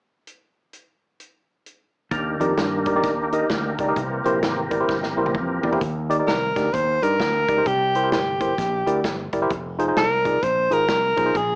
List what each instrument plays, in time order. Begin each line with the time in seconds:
0.27 closed hi-hat
0.73 closed hi-hat
1.20 closed hi-hat
1.66 closed hi-hat
2.11 fingered electric bass D#2, tonewheel organ D#3 A#3 D4 G4 A#4, tine electric piano D#3, kick, closed hi-hat
2.40 fingered electric bass F2, tine electric piano D#4 G4 A#4 D5, closed hi-hat
2.57 fingered electric bass G2, snare, closed hi-hat
2.86 tine electric piano D#4 G4 A#4 D5, kick, closed hi-hat
2.96 tine electric piano D#4 G4 A#4 D5
3.03 fingered electric bass D#2, kick, snare, closed hi-hat
3.32 tine electric piano D#4 G4 A#4 D#5, closed hi-hat
3.50 fingered electric bass D2, kick, snare, closed hi-hat
3.78 fingered electric bass C#2, tine electric piano D#4 G4 A#4 D5, kick, closed hi-hat
3.88 tine electric piano D#4 G4 A#4 D#5
3.96 fingered electric bass C2, tine electric piano C3, tonewheel organ E3 A#3 C4 G4, kick, closed hi-hat
4.24 fingered electric bass A#1, tine electric piano E4 G4 A#4 C5, closed hi-hat
4.42 fingered electric bass G#1, snare, closed hi-hat
4.70 tine electric piano E4 G4 A#4 D5, kick, closed hi-hat
4.80 tine electric piano E4 G4 A#4 C5
4.89 fingered electric bass G1, kick, snare
5.03 snare
5.17 fingered electric bass A#1, tine electric piano E4 G4 A#4 C5
5.26 high tom
5.34 fingered electric bass F2, kick, mid tom
5.63 fingered electric bass E2, tine electric piano E4 G4 A#4 D5, floor tom
5.72 tine electric piano E4 G4 A#4 C5, floor tom
5.81 fingered electric bass D#2, tine electric piano D#3, kick, closed hi-hat
6.09 tine electric piano D#4 G4 A#4 D5, closed hi-hat
6.19 tine electric piano D#4 G4 A#4 D5
6.27 fingered electric bass C2, alto saxophone A#4, snare, closed hi-hat
6.56 fingered electric bass D2, tine electric piano D#4 G4 A#4 D5, kick, snare, closed hi-hat
6.73 fingered electric bass D#2, alto saxophone C5, kick, closed hi-hat
7.02 fingered electric bass G2, tine electric piano D#4 G4 A#4 D5, alto saxophone A#4, closed hi-hat
7.20 fingered electric bass D2, kick, snare, closed hi-hat
7.48 fingered electric bass C#2, tine electric piano D#4 G4 A#4 D5, kick, closed hi-hat
7.57 tine electric piano D#4 G4 A#4 C5
7.66 fingered electric bass C2, tine electric piano C3, alto saxophone G4, kick, closed hi-hat
7.95 tine electric piano E4 G4 A#4 C5, closed hi-hat
8.03 tine electric piano E4 G4 A#4 C5
8.12 fingered electric bass G1, alto saxophone G4, snare, closed hi-hat
8.41 tine electric piano E4 G4 A#4 C5, kick, closed hi-hat
8.58 fingered electric bass A#1, kick, snare, closed hi-hat
8.87 fingered electric bass D2, tine electric piano E4 G4 A#4 D5, closed hi-hat
9.04 fingered electric bass G1, kick, snare, closed hi-hat
9.33 fingered electric bass F#1, tine electric piano E4 G4 A#4 D5, kick, closed hi-hat
9.42 tine electric piano E4 G4 A#4 C5
9.50 fingered electric bass F1, kick, closed hi-hat
9.79 tine electric piano D#4 F4 G#4 C5, closed hi-hat
9.88 tine electric piano D#4 F4 G#4 C5
9.97 fingered electric bass C2, alto saxophone A#4, snare, closed hi-hat
10.25 tine electric piano D#4 F4 G#4 D5, kick, closed hi-hat
10.43 fingered electric bass A#1, alto saxophone C5, kick, closed hi-hat
10.71 fingered electric bass G#1, tine electric piano D#4 F4 G#4 C5, alto saxophone A#4, closed hi-hat
10.89 fingered electric bass C2, kick, snare, closed hi-hat
11.16 fingered electric bass B1, tine electric piano D#4 F4 G#4 C5, kick, closed hi-hat
11.25 tine electric piano D#4 F4 G#4 C5
11.35 fingered electric bass A#1, tine electric piano A#2, alto saxophone G#4, kick, closed hi-hat